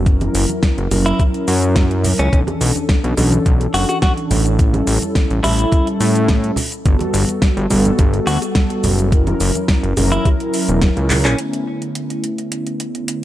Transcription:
Already playing: analog synth bass F#1
0.05 analog polysynth F#3 A#4, kick, closed hi-hat, cabasa, shaker
0.20 closed hi-hat, high bongo, high conga, cabasa
0.34 analog synth bass F#1, open hi-hat, cabasa, shaker
0.49 closed hi-hat, high conga, cabasa, shaker
0.62 kick, snare, closed hi-hat, cabasa, shaker
0.78 analog synth bass F#1, closed hi-hat, cabasa
0.90 analog synth bass F#1, analog polysynth F#3 C#4 E4 A#4, open hi-hat, high bongo, low conga, cabasa, shaker
1.06 clean electric guitar E4, closed hi-hat, cabasa, shaker
1.19 kick, closed hi-hat, high bongo, cabasa, shaker
1.34 closed hi-hat, cabasa
1.48 analog synth bass F#2, open hi-hat, cabasa, shaker
1.63 closed hi-hat, shaker
1.76 kick, snare, closed hi-hat, cabasa, shaker
1.90 closed hi-hat, cabasa
2.04 open hi-hat, low conga, cabasa, shaker
2.19 analog synth bass C#2, clean electric guitar C#4, closed hi-hat, shaker
2.32 analog synth bass B1, analog polysynth E3 C#4 D4 A4, kick, closed hi-hat, cabasa, shaker
2.47 closed hi-hat, high bongo, high conga, cabasa
2.61 analog synth bass B1, open hi-hat, cabasa, shaker
2.76 closed hi-hat, high conga, cabasa, shaker
2.89 kick, snare, closed hi-hat, cabasa, shaker
3.03 analog synth bass B1, closed hi-hat, cabasa
3.17 analog synth bass B1, analog polysynth E3 C#4 D4 A4, open hi-hat, high bongo, low conga, cabasa, shaker
3.32 closed hi-hat, high conga, cabasa, shaker
3.45 analog synth bass B1, kick, closed hi-hat, cabasa, shaker
3.60 closed hi-hat, high bongo, cabasa
3.74 analog synth bass F#1, clean electric guitar F#4, open hi-hat, cabasa, shaker
3.89 clean electric guitar F#4, closed hi-hat, high bongo, cabasa, shaker
4.02 clean electric guitar F#4, kick, snare, closed hi-hat, cabasa, shaker
4.17 closed hi-hat, cabasa
4.31 analog synth bass A1, open hi-hat, low conga, cabasa, shaker
4.46 closed hi-hat, shaker
4.58 analog polysynth G3 C#4 E4 A4, kick, closed hi-hat, cabasa, shaker
4.74 closed hi-hat, high bongo, high conga, cabasa
4.87 analog synth bass A1, open hi-hat, cabasa, shaker
5.02 closed hi-hat, high conga, cabasa, shaker
5.15 kick, snare, closed hi-hat, cabasa, shaker
5.30 analog synth bass A1, closed hi-hat, cabasa
5.43 analog synth bass A1, analog polysynth G3 C#4 E4 A4, clean electric guitar E4, open hi-hat, high bongo, low conga, cabasa, shaker
5.59 closed hi-hat, shaker
5.72 kick, closed hi-hat, high bongo, cabasa, shaker
5.87 closed hi-hat, cabasa
6.00 analog synth bass A2, open hi-hat, cabasa, shaker
6.15 closed hi-hat, cabasa, shaker
6.28 kick, snare, closed hi-hat, cabasa, shaker
6.43 closed hi-hat, cabasa
6.56 open hi-hat, low conga, cabasa, shaker
6.72 closed hi-hat, cabasa, shaker
6.85 analog synth bass G1, analog polysynth G3 B3 F#4 A4, kick, closed hi-hat, cabasa, shaker
6.99 closed hi-hat, high bongo, high conga, cabasa
7.13 analog synth bass G1, open hi-hat, cabasa, shaker
7.28 closed hi-hat, high conga, cabasa, shaker
7.42 kick, snare, closed hi-hat, cabasa, shaker
7.57 analog synth bass G1, closed hi-hat, cabasa
7.69 analog synth bass G1, analog polysynth G3 B3 F#4 A4, open hi-hat, high bongo, low conga, cabasa, shaker
7.85 closed hi-hat, high conga, cabasa, shaker
7.99 analog synth bass G1, kick, closed hi-hat, cabasa, shaker
8.14 closed hi-hat, high bongo, cabasa
8.27 analog synth bass D2, clean electric guitar F#4, open hi-hat, cabasa, shaker
8.42 closed hi-hat, high bongo, cabasa, shaker
8.55 kick, snare, closed hi-hat, cabasa, shaker
8.70 closed hi-hat, cabasa
8.84 analog synth bass F#1, open hi-hat, low conga, cabasa, shaker
8.99 closed hi-hat, cabasa, shaker
9.11 analog polysynth F#3 C#4 E4 A#4, kick, closed hi-hat, cabasa, shaker
9.27 closed hi-hat, high bongo, high conga, cabasa
9.40 analog synth bass F#1, open hi-hat, cabasa, shaker
9.55 closed hi-hat, high conga, cabasa, shaker
9.68 kick, snare, closed hi-hat, cabasa, shaker
9.83 analog synth bass F#1, closed hi-hat, cabasa
9.96 analog synth bass F#1, analog polysynth F#3 C#4 E4 A#4, open hi-hat, high bongo, low conga, cabasa, shaker
10.11 clean electric guitar E4, closed hi-hat, high conga, cabasa, shaker
10.25 kick, closed hi-hat, high bongo, cabasa, shaker
10.40 closed hi-hat, cabasa
10.53 open hi-hat, cabasa, shaker
10.68 analog synth bass E1, closed hi-hat, cabasa, shaker
10.82 kick, snare, closed hi-hat, cabasa, shaker
10.96 analog synth bass C#2, closed hi-hat, cabasa
11.10 analog polysynth F#3 C#4 E4 A#4, clap, open hi-hat, low conga, cabasa, shaker
11.25 analog synth bass A#1, clean electric guitar C#4, clap, closed hi-hat, high bongo, cabasa, shaker
11.38 analog polysynth D3 A3 B3, closed hi-hat
11.53 closed hi-hat
11.82 closed hi-hat
11.95 closed hi-hat
12.10 closed hi-hat
12.24 closed hi-hat
12.38 closed hi-hat
12.52 closed hi-hat
12.67 closed hi-hat
12.80 closed hi-hat
12.95 closed hi-hat
13.08 closed hi-hat

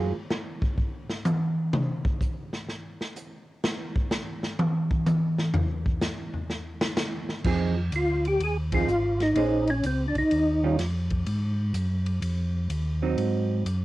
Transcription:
Already playing: tonewheel organ F#2, hollow-body jazz guitar F#3 A#3 F4 G#4
0.30 snare, hi-hat pedal
0.62 kick
0.78 kick
1.09 snare
1.25 hi-hat pedal, high tom
1.73 mid tom
2.05 kick
2.21 kick, hi-hat pedal
2.53 snare
2.69 snare
3.01 snare
3.16 hi-hat pedal
3.64 snare
3.96 kick
4.11 snare, hi-hat pedal
4.43 snare
4.59 high tom
4.91 kick
5.06 hi-hat pedal, high tom
5.38 snare
5.54 floor tom
5.86 kick
6.01 snare, hi-hat pedal
6.34 floor tom
6.50 snare
6.81 snare
6.97 snare, hi-hat pedal
7.29 snare
7.44 tonewheel organ F2, hollow-body jazz guitar F3 C4 D#4 G#4, kick, crash
7.92 tonewheel organ D2 F4, hi-hat pedal, ride
8.25 tonewheel organ G4, ride
8.40 tonewheel organ D#2, ride
8.44 tonewheel organ G#4
8.72 hollow-body jazz guitar F3 C4 D#4 G#4, tonewheel organ F4, kick, ride
8.88 tonewheel organ G#1, hi-hat pedal
9.20 tonewheel organ D#4, snare, ride
9.35 tonewheel organ A#1, hollow-body jazz guitar A#3 C#4 G#4 C5, ride
9.67 tonewheel organ C#4, ride
9.83 tonewheel organ C#2 C4, hi-hat pedal, ride
10.08 tonewheel organ D4
10.15 tonewheel organ C#2 D#4, kick, ride
10.31 tonewheel organ D#2, ride
10.64 hollow-body jazz guitar D#3 G3 C#4 F4
10.78 tonewheel organ F2, snare, hi-hat pedal, ride
11.10 kick, ride
11.26 tonewheel organ G#2, ride
11.73 tonewheel organ F#2, hi-hat pedal, ride
12.06 ride
12.22 tonewheel organ F2, ride
12.70 tonewheel organ D#2, hi-hat pedal, ride
13.02 hollow-body jazz guitar F#3 C4 D#4
13.17 tonewheel organ G#2, ride
13.65 tonewheel organ F#2, hi-hat pedal, ride

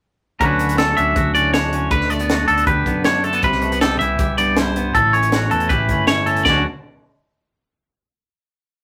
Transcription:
0.40 fingered electric bass D2, clean electric guitar D3 F#3 C#4 D4 F#4 B4, kick, closed hi-hat
0.59 clean electric guitar C#4, closed hi-hat
0.69 closed hi-hat
0.78 clean electric guitar A4, snare, closed hi-hat
0.97 fingered electric bass D2, clean electric guitar F#3 D4 E5, closed hi-hat
1.16 fingered electric bass D2, clean electric guitar F#4, kick, closed hi-hat
1.35 clean electric guitar A2 C#4 D5, closed hi-hat
1.53 clean electric guitar D4 C#5, snare, closed hi-hat
1.73 clean electric guitar C#4, closed hi-hat
1.91 fingered electric bass D2, clean electric guitar D3 B4, kick, closed hi-hat
2.01 snare
2.10 clean electric guitar A3 D5, closed hi-hat
2.19 clean electric guitar B3, closed hi-hat
2.29 clean electric guitar F#4, snare, closed hi-hat
2.48 fingered electric bass D2, clean electric guitar D4 A4, closed hi-hat
2.58 closed hi-hat
2.67 fingered electric bass D2, clean electric guitar G4 B4, kick, closed hi-hat
2.86 fingered electric bass F#2, clean electric guitar D3 B3, kick, closed hi-hat
3.04 clean electric guitar D4 C#5, snare, closed hi-hat
3.24 clean electric guitar A3 A4, closed hi-hat
3.33 clean electric guitar B3, closed hi-hat
3.43 fingered electric bass C2, clean electric guitar C3 B4, kick, closed hi-hat
3.52 snare
3.62 clean electric guitar A3, closed hi-hat
3.72 clean electric guitar B3, closed hi-hat
3.81 clean electric guitar G4 A4, snare, closed hi-hat
3.99 fingered electric bass C2, clean electric guitar E3 E4 E5, closed hi-hat
4.19 fingered electric bass C2, clean electric guitar G4, kick, closed hi-hat
4.38 clean electric guitar G2 B3 D5, closed hi-hat
4.56 clean electric guitar E4 C5, snare, closed hi-hat
4.76 clean electric guitar B3, closed hi-hat
4.95 fingered electric bass A1, clean electric guitar A2 A4, kick, closed hi-hat
5.13 clean electric guitar C#4 C#5, closed hi-hat
5.23 closed hi-hat
5.32 clean electric guitar F#4, snare, closed hi-hat
5.51 fingered electric bass E2, clean electric guitar E3 E4 A4, closed hi-hat
5.60 closed hi-hat
5.69 fingered electric bass A1, clean electric guitar G4 B4, kick, closed hi-hat
5.89 fingered electric bass G1, clean electric guitar A2 C#4, kick, closed hi-hat
6.07 clean electric guitar E4 C#5, snare, closed hi-hat
6.26 clean electric guitar C#4 A4, closed hi-hat
6.37 closed hi-hat
6.45 fingered electric bass D2, clean electric guitar D3 F#3 C#4 D5, kick, snare, crash
6.49 clean electric guitar D4 F#4

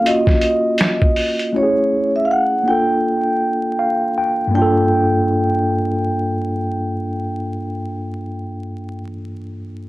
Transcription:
0.01 tine electric piano A#3 C#4
0.05 tine electric piano F4 F#4, vibraphone D#5, closed hi-hat
0.27 kick, snare
0.41 closed hi-hat
0.78 snare, closed hi-hat
1.02 kick
1.16 open hi-hat
1.39 closed hi-hat
1.53 tine electric piano A3 C#4 E4 F#4, vibraphone C#5
1.63 tine electric piano G#4
2.16 vibraphone E5
2.25 vibraphone F5
2.31 vibraphone F#5
2.63 tine electric piano A#3 D4
2.68 tine electric piano F4 A4, vibraphone G5
3.79 tine electric piano F5
4.18 tine electric piano G5
4.47 tine electric piano G2 A#3
4.55 tine electric piano D4 F4, vibraphone G5
4.62 tine electric piano A4

